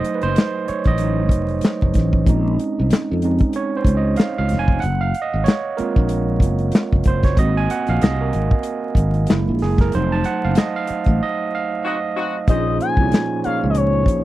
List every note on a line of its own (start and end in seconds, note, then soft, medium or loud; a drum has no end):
0.00 0.63 F#3 medium
0.00 0.64 A3 soft
0.00 0.64 D#4 medium
0.00 0.23 C5 medium
0.00 0.15 D#5 loud
0.04 closed hi-hat medium
0.15 0.22 B4 medium
0.21 0.35 F#1 medium
0.21 0.69 C5 medium
0.21 closed hi-hat soft
0.36 snare loud
0.36 clap medium
0.36 closed hi-hat medium
0.68 0.76 C#5 medium
0.68 muted fretless electric bass stroke soft
0.68 closed hi-hat medium
0.84 1.30 A1 medium
0.84 2.42 D#5 medium
0.84 kick medium
0.84 closed hi-hat soft
0.98 1.28 F#3 soft
0.98 1.28 A3 soft
0.98 1.29 D#4 medium
0.98 closed hi-hat medium
1.29 1.60 F1 medium
1.29 kick medium
1.29 closed hi-hat medium
1.49 closed hi-hat soft
1.61 snare loud
1.61 closed hi-hat medium
1.66 clap loud
1.82 1.96 F1 medium
1.82 kick medium
1.94 2.25 A1 medium
1.94 kick medium
1.94 snare soft
1.94 closed hi-hat medium
2.13 kick medium
2.26 2.56 A#1 loud
2.26 2.71 G#3 soft
2.26 2.72 C4 soft
2.26 2.72 C#4 soft
2.26 2.72 D#4 medium
2.26 kick loud
2.26 closed hi-hat medium
2.59 closed hi-hat medium
2.79 2.91 C2 medium
2.91 muted fretless electric bass stroke soft
2.91 snare loud
2.91 clap medium
2.91 closed hi-hat medium
3.11 3.39 F2 medium
3.22 3.52 G#3 soft
3.22 3.52 C4 soft
3.22 3.52 C#4 soft
3.22 3.52 D#4 soft
3.22 closed hi-hat medium
3.38 kick medium
3.38 closed hi-hat soft
3.53 3.75 C#5 medium
3.53 closed hi-hat medium
3.77 3.98 C5 medium
3.84 4.15 C#2 medium
3.84 kick medium
3.84 closed hi-hat medium
3.97 4.17 D#5 medium
4.16 4.37 F5 medium
4.16 snare loud
4.16 closed hi-hat medium
4.21 clap medium
4.38 4.54 C#2 medium
4.38 4.59 F5 medium
4.49 4.80 F1 medium
4.49 snare soft
4.49 closed hi-hat medium
4.59 4.82 G#5 loud
4.68 kick medium
4.80 5.12 F#1 loud
4.80 5.03 F#5 loud
4.80 closed hi-hat medium
5.01 5.24 F5 loud
5.14 closed hi-hat medium
5.22 5.45 D#5 medium
5.34 5.45 G#1 medium
5.44 5.78 C#5 medium
5.44 closed hi-hat medium
5.48 snare loud
5.48 clap medium
5.77 6.22 G#3 medium
5.77 6.22 A#3 soft
5.77 6.22 C4 soft
5.77 6.23 F4 medium
5.77 6.37 A#4 medium
5.77 muted fretless electric bass stroke soft
5.77 closed hi-hat medium
5.96 6.38 A#1 medium
5.96 kick medium
6.09 closed hi-hat medium
6.40 6.70 F#1 medium
6.40 kick medium
6.40 closed hi-hat medium
6.59 closed hi-hat soft
6.72 snare loud
6.72 closed hi-hat medium
6.76 clap loud
6.93 7.05 F#1 medium
6.93 kick loud
7.04 7.38 F#1 medium
7.04 7.25 C5 medium
7.04 kick loud
7.04 closed hi-hat medium
7.23 7.37 C#5 medium
7.23 kick loud
7.23 snare soft
7.23 closed hi-hat soft
7.37 7.67 G#1 loud
7.37 7.82 A#3 medium
7.37 7.82 C4 soft
7.37 7.82 F#4 medium
7.37 7.55 D#5 loud
7.37 kick loud
7.37 closed hi-hat medium
7.57 7.70 G#5 loud
7.70 7.87 F#5 medium
7.70 closed hi-hat medium
7.87 8.00 A#1 loud
7.87 8.02 F5 medium
7.87 closed hi-hat soft
8.02 8.31 C2 medium
8.02 8.21 D#5 medium
8.02 snare loud
8.02 clap medium
8.02 closed hi-hat medium
8.21 8.50 A#4 medium
8.33 8.50 G#1 medium
8.33 closed hi-hat medium
8.51 kick medium
8.63 closed hi-hat loud
8.95 9.25 G#1 medium
8.95 kick medium
8.95 closed hi-hat medium
9.14 closed hi-hat soft
9.27 9.90 G#3 medium
9.27 9.90 A#3 soft
9.27 snare loud
9.27 closed hi-hat medium
9.31 9.46 F#1 medium
9.31 9.91 E4 medium
9.31 clap medium
9.49 9.60 A#1 medium
9.59 9.91 F#1 medium
9.59 9.80 G#4 medium
9.59 snare soft
9.59 open hi-hat soft
9.78 9.93 A#4 medium
9.78 kick medium
9.78 snare soft
9.78 closed hi-hat soft
9.92 10.23 F1 loud
9.92 10.38 F#3 medium
9.92 10.38 A3 medium
9.92 10.38 D#4 medium
9.92 10.12 C5 loud
9.92 closed hi-hat medium
10.12 10.24 A5 loud
10.24 10.44 F#5 loud
10.24 closed hi-hat medium
10.44 10.56 F#1 medium
10.44 10.58 F5 medium
10.55 10.76 D#5 medium
10.55 snare loud
10.55 clap medium
10.55 closed hi-hat medium
10.76 11.05 F5 medium
10.87 muted fretless electric bass stroke soft
10.87 closed hi-hat medium
11.04 11.19 A1 medium
11.04 kick medium
11.04 closed hi-hat soft
11.23 11.51 D#5 medium
11.55 11.86 F5 medium
11.84 11.96 C4 medium
11.84 11.96 D#4 medium
11.84 11.95 F#4 medium
11.84 12.45 D#5 medium
12.15 12.36 C4 medium
12.15 12.36 D#4 medium
12.15 12.36 F#4 medium
12.48 12.77 A#1 medium
12.48 12.91 A#2 medium
12.48 12.91 F3 medium
12.48 12.91 C#4 medium
12.48 12.91 D#4 medium
12.48 12.91 G#4 medium
12.48 12.92 C5 medium
12.48 12.78 D#5 loud
12.48 kick loud
12.48 closed hi-hat medium
12.80 13.40 G#5 loud
12.80 closed hi-hat medium
12.97 13.10 C2 medium
12.97 13.38 A#2 medium
12.97 13.39 F3 soft
12.97 13.39 C#4 medium
12.97 13.39 D#4 medium
12.97 13.39 G#4 medium
12.97 13.39 C#5 medium
12.97 kick medium
13.12 snare loud
13.12 clap medium
13.12 closed hi-hat medium
13.44 14.24 A#2 medium
13.44 14.24 F3 medium
13.44 14.24 C#4 medium
13.44 14.24 D#4 medium
13.44 14.24 G#4 medium
13.44 14.24 C#5 medium
13.44 13.68 F5 medium
13.44 muted fretless electric bass stroke soft
13.44 closed hi-hat medium
13.64 14.07 C#2 medium
13.70 13.78 D#5 medium
13.75 14.24 C#5 medium
13.75 closed hi-hat medium
14.06 14.24 A#1 medium
14.06 kick medium
14.06 closed hi-hat medium